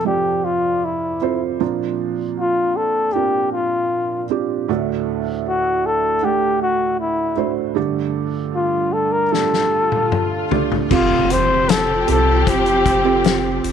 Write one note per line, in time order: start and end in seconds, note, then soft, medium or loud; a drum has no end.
0.00 1.57 F2 medium
0.00 1.57 C3 medium
0.00 0.04 C4 medium
0.00 1.22 F4 medium
0.00 0.05 A4 medium
0.00 1.23 C5 medium
0.04 1.16 F3 soft
0.04 1.16 C4 soft
0.04 0.46 G4 medium
0.04 1.17 A4 soft
0.04 1.17 D5 medium
0.44 0.86 F4 medium
0.85 1.43 E4 medium
1.21 1.58 C4 medium
1.21 1.59 F4 medium
1.21 1.59 A4 soft
1.21 1.59 C5 medium
1.60 4.65 A#2 medium
1.60 4.65 F3 medium
1.60 3.08 A#3 medium
1.60 3.07 C4 medium
1.60 3.08 D4 medium
1.60 3.08 F4 medium
2.39 2.78 F4 medium
2.76 3.14 A4 medium
3.13 4.25 C4 soft
3.13 4.25 D4 soft
3.13 4.25 F4 soft
3.13 3.52 G4 medium
3.13 4.26 A#4 medium
3.52 4.26 F4 medium
4.30 4.67 C4 medium
4.30 4.67 D4 medium
4.30 4.68 F4 medium
4.30 4.68 G4 medium
4.68 7.73 D2 medium
4.68 7.73 A2 medium
4.68 6.15 A3 medium
4.68 6.15 D4 medium
4.68 6.15 F#4 medium
4.68 6.16 A4 medium
4.68 swell medium
5.48 5.88 F#4 medium
5.86 6.26 A4 medium
6.22 7.32 A3 medium
6.22 7.32 D4 soft
6.22 6.61 G4 medium
6.22 7.33 A4 medium
6.22 7.32 F#5 soft
6.62 6.98 F#4 medium
7.00 7.54 E4 medium
7.36 7.73 A3 medium
7.36 7.74 D4 medium
7.36 7.75 F#4 medium
7.36 7.75 C5 medium
7.75 10.86 G2 medium
7.75 10.86 D3 medium
7.75 9.23 A3 medium
7.75 9.23 D4 medium
7.75 9.24 G4 medium
7.75 9.24 A4 medium
8.55 8.94 F4 medium
8.93 9.13 A4 medium
9.12 9.34 A#4 medium
9.31 10.45 A3 soft
9.31 10.45 D4 soft
9.31 10.45 G4 soft
9.31 10.51 A4 medium
9.31 10.45 A4 soft
9.31 snare soft
9.54 snare soft
9.92 high tom soft
10.12 mid tom medium
10.51 10.88 A3 medium
10.51 10.88 D4 medium
10.51 10.89 G4 medium
10.51 10.89 A4 medium
10.51 floor tom medium
10.72 floor tom medium
10.90 12.04 F1 medium
10.90 12.04 C3 medium
10.90 13.72 F3 medium
10.90 12.02 C4 medium
10.90 13.72 C4 medium
10.90 12.02 F4 medium
10.90 11.33 F4 medium
10.90 13.72 G4 medium
10.90 12.02 G4 medium
10.90 12.02 A4 medium
10.90 kick loud
10.90 crash medium
10.90 impact medium
11.30 11.72 C5 medium
11.30 closed hi-hat medium
11.69 12.08 A4 medium
11.69 snare loud
11.69 closed hi-hat medium
12.06 12.44 C2 medium
12.06 12.99 C4 medium
12.06 13.00 F4 medium
12.06 13.00 G4 medium
12.06 13.00 A4 medium
12.06 closed hi-hat medium
12.11 12.51 A4 medium
12.47 13.60 F1 medium
12.47 13.65 G4 medium
12.47 kick medium
12.47 closed hi-hat medium
12.66 closed hi-hat soft
12.86 kick medium
12.86 closed hi-hat medium
13.04 13.72 C4 medium
13.04 13.72 F4 medium
13.04 13.72 G4 medium
13.04 13.72 A4 medium
13.24 snare loud
13.24 closed hi-hat medium
13.64 13.72 F1 medium
13.64 closed hi-hat medium